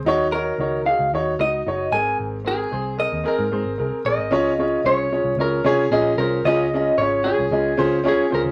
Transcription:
<<
  \new Staff \with { instrumentName = "Clean electric guitar" } { \time 4/4 \key des \major \tempo 4 = 113 r8 bes'4 f''8 r8 ees''4 aes''8 | r8 aes'4 ees''8 bes'4. ees''8~ | ees''4 des''4 bes'8 aes'8 aes'8 bes'8 | ees''4 des''8 aes'4. aes'8 bes'8 | }
  \new Staff \with { instrumentName = "Upright piano" } { \time 4/4 \key des \major <ees' ges' des''>8 <ees' ges' des''>8 <ees' ges' des''>8 <ees' ges' aes'>8 <ees' ges' des''>8 <ees' ges' ees''>8 <ees' ges' des''>8 <c' aes' bes'>8~ | <c' aes' bes'>8 <c' aes' bes'>8 <c' aes' c''>8 <c' aes' bes'>8 <c' aes' bes'>8 <c' aes' c''>8 <c' aes' bes'>8 <c' aes' bes'>8 | <des' f' aes' des''>8 <des' f' aes' des''>8 <des' f' aes' des''>8 <des' f' aes' des''>8 <des' f' aes' des''>8 <des' f' aes' des''>8 <des' f' aes' ees''>8 <des' f' aes' c''>8 | <des' f' aes' ees''>8 <des' f' aes' ees''>8 <des' f' aes' des''>8 <des' f' aes' des''>8 <des' f' aes' ees''>8 <des' f' aes' c''>8 <des' f' aes' des''>8 <des' f' aes' c''>8 | }
  \new Staff \with { instrumentName = "Upright piano" } { \clef bass \time 4/4 \key des \major ees4. r2 aes,8~ | aes,4 r2. | des4. r2 r8 | des4. r2 r8 | }
  \new Staff \with { instrumentName = "Picked electric bass" } { \clef bass \time 4/4 \key des \major ees,4 des,8. des,16 ees,8 des,8 ges,,8 aes,,8 | aes,,4 c,8. ees,16 r16 aes,16 aes,16 aes,,16 c,16 r16 bes,,16 aes,,16 | des,4 c,8. c,16 des,8 c,8 bes,,8 c,8 | des,4 aes,,8. c,16 des,8 des,8. r16 des,16 des,16 | }
>>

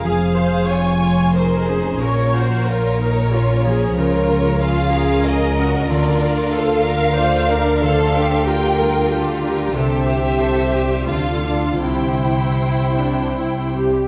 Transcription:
<<
  \new Staff \with { instrumentName = "Violin section" } { \time 3/4 \key bes \minor \tempo 4 = 92 f''4 aes''4 c''4 | bes'4 des''2 | des''4 f''4 ees''4 | \key c \mixolydian d''4 f''2 |
f''4 g''4 r4 | e''2 f''4 | g''2~ g''8 r8 | }
  \new Staff \with { instrumentName = "Viola section" } { \time 3/4 \key bes \minor aes'8 c''8 des''4 bes'8 aes'8 | des''8 c''8 bes'4 f'8 aes'8 | bes'4 f'8 aes'8 bes'4 | \key c \mixolydian bes'4 a'8 bes'8 c''8 bes'8 |
a'4 g'8 bes'8 g'4 | a'8 g'4. f'4 | e'4 e'8 d'8 e'8 g'8 | }
  \new Staff \with { instrumentName = "Violin section" } { \time 3/4 \key bes \minor << { aes'2 aes'4 | des''4 bes'2 | bes'4 aes'8 bes'4.~ | \key c \mixolydian bes'4 c''8 bes'8 d''4 |
c''4 bes'4 a'8 bes'8 | c''4 c''4 a'4 | c''2~ c''8 r8 | } \\ { aes'8 aes'8 f'8 f'8 ees'4 | des'8 ges'8 f'8 ees'8 des'4 | f'4 f'4 aes'8 ges'8 | f'2 f'8 bes'8 |
a'8 g'8 f'8 f'4. | g'8 g'8 a'8 g'8 f'8 d'8 | e'2~ e'8 r8 | } >> }
  \new Staff \with { instrumentName = "Harp" } { \time 3/4 \key bes \minor <f aes des' f' aes'>8 aes'8 des''8 f'8 aes'8 des'8 | bes,8 f'8 bes'8 bes8 f'8 f8 | des8 f'8 bes'8 bes8 f'8 des'8 | \key c \mixolydian d8 f'8 bes'8 bes8 f'8 d'8 |
d8 g'8 bes'8 g8 g'8 d'8 | c8 g'8 c''8 g8 d8 <d' a'>8 | c8 e'8 c''8 c'8 e'8 g8 | }
  \new Staff \with { instrumentName = "Cello section" } { \clef bass \time 3/4 \key bes \minor f,2. | bes,2. | des2. | \key c \mixolydian d2.~ |
d2. | c2 d4 | c2~ c8 r8 | }
  \new Staff \with { instrumentName = "Double bass section" } { \clef bass \time 3/4 \key bes \minor f,,2. | bes,,2. | des,2. | \key c \mixolydian d,2.~ |
d,2. | c,2 d,4 | c,2~ c,8 r8 | }
>>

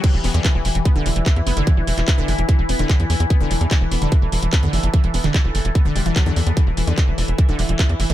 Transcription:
<<
  \new Staff \with { instrumentName = "Synth drone" } { \time 4/4 \key c \lydian \tempo 4 = 147 <e e'>1~ | <e e'>1 | a'1~ | a'1 |
e'1 | }
  \new Staff \with { instrumentName = "Synth arpeggio sound" } { \clef bass \time 4/4 \key c \lydian e16 e16 b16 d16 e16 e16 e16 e16 b16 d16 e16 e16 e16 e16 b16 d16 | e16 e16 e16 e16 b16 d16 e16 e16 e16 e16 b16 d16 e16 e16 e16 e16 | b16 d16 e16 e16 e16 e16 b16 d16 e16 e16 e16 e16 b16 d16 e16 e16 | e16 e16 b16 d16 e16 e16 e16 e16 b16 d16 g16 e16 fis16 d16 r16 b16 |
e16 e16 e16 d16 e16 e16 e16 e16 e16 d16 e16 e16 e16 e16 e16 d16 | }
  \new Staff \with { instrumentName = "Analog synth bass" } { \clef bass \time 4/4 \key c \lydian r16 e,,16 e,,16 e,16 r16 e,,16 e,,16 e,,16 r16 e,,16 e,,16 e,,16 r16 e,16 fis,,16 fis,,16 | r16 e,,16 e,,16 e,,16 r16 e,,16 fis,,16 e,,16 r16 e,,16 e,,16 e,,16 r16 e,16 e,16 e,16 | r16 e,,16 e,,16 e,16 r16 e,,16 e,,16 e,,16 r16 e,,16 e,,16 e,,16 r16 e,16 fis,,16 fis,,16 | r16 e,,16 e,,16 e,,16 r16 e,,16 fis,,16 e,,16 r16 e,,16 e,,16 e,,16 r16 e,16 e,16 e,16 |
r16 e,,16 e,,16 e,16 r16 e,,16 e,,16 e,,16 r16 e,,16 e,,16 e,,16 r16 e,16 fis,,16 fis,,16 | }
  \new DrumStaff \with { instrumentName = "Drums" } \drummode { \time 4/4 <cymc hh bd>8 hho16 hh16 <hc hh bd>8 hho16 hh16 <hh bd>8 hho16 hh16 <hc hh bd>16 hh16 hho16 hh16 | <hh bd>8 hho16 <hc hh>16 <hc hh bd>8 hho16 hh16 <hh bd>8 hho16 hh16 <hc hh bd>16 hh16 hho16 hh16 | <hh bd>8 hho16 hh16 <hc hh bd>8 hho16 hh16 <hh bd>8 hho16 hh16 <hc hh bd>16 hh16 hho16 hh16 | <hh bd>16 hh16 hho16 <hc hh>16 <hc hh bd>8 hho16 hh16 <hh bd>8 hho16 hh16 <hc hh bd>16 hh16 hho16 hh16 |
<hh bd>8 hho16 hh16 <hc hh bd>8 hho16 hh16 <hh bd>8 hho16 hh16 <hc hh bd>16 hh16 hho16 hh16 | }
>>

